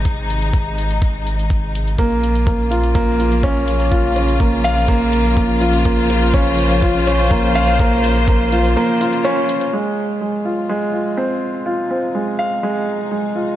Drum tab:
HH |x-xxx-xxx-xxx-xx|x-xxx-xxx-xxx-xx|x-xxx-xxx-xxx-xx|x-xxx-xxx-xxx-xx|
BD |o---o---o---o---|o---o---o---o---|o---o---o---o---|o---o---o---o---|

HH |x-xxx-xxx-xxx-xx|----------------|----------------|
BD |o---o-----------|----------------|----------------|